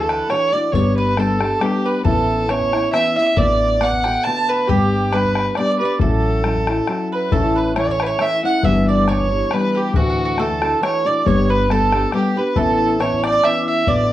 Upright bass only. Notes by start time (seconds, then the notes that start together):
Already playing: D2
0.73 G1
2.06 A1
3.37 A1
4.69 G1
6.01 A1
7.32 A1
8.64 G1
9.95 D2
11.27 G1
12.58 A1
13.88 A1